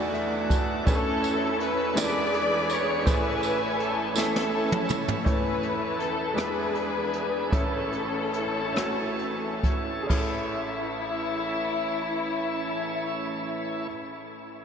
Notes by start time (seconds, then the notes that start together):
Already playing: E2 E3 A3 D4 E4 F#4 D5
0.14 E5, closed hi-hat
0.49 A5, kick, closed hi-hat, tambourine
0.84 E2 E3 A3 C#4 E4 A4, kick, closed hi-hat, tambourine
0.89 C#4 E4 A4 B4
0.95 C#5
1.24 closed hi-hat, tambourine
1.60 B4, closed hi-hat
1.64 B4
1.94 E2 E3 G#3 B3 D4 E4 G#4 A#4 D5, closed hi-hat, tambourine
1.98 G#4 B4 D5, snare
2.04 B4
2.34 closed hi-hat
2.70 C#5, closed hi-hat, tambourine
3.03 A1 A2 E3 A3 C#4 E4 G#4 B4 C5, kick, closed hi-hat, tambourine
3.07 A3 E4 B4 G#5
3.14 C#5
3.43 closed hi-hat, tambourine
3.79 A4, closed hi-hat
4.14 A3 E4 A4 G#5, snare, tambourine
4.18 C#4 A4 E5
4.36 snare
4.72 mid tom
4.89 mid tom, tambourine
5.08 floor tom
5.24 E2 E3 A3 C#4 E4 G#4 C#5, kick, closed hi-hat
5.28 E4 B4
5.33 A4
5.63 closed hi-hat
5.99 A4, closed hi-hat
6.34 E2 E3 G#3 B3 D4 E4 G4 G#4 B4, closed hi-hat
6.38 cross-stick
6.44 G#4
6.75 closed hi-hat
7.13 closed hi-hat
7.50 A1 A2 E3 A3 C#4 E4 A4, kick, closed hi-hat
7.92 closed hi-hat
8.33 closed hi-hat
8.73 A3 C#4 E4, closed hi-hat
8.77 F#4, cross-stick
9.19 closed hi-hat
9.63 kick, closed hi-hat
10.02 G#4
10.07 A1 E3 A3 C#4 E4, kick, crash
10.12 E4
10.17 A4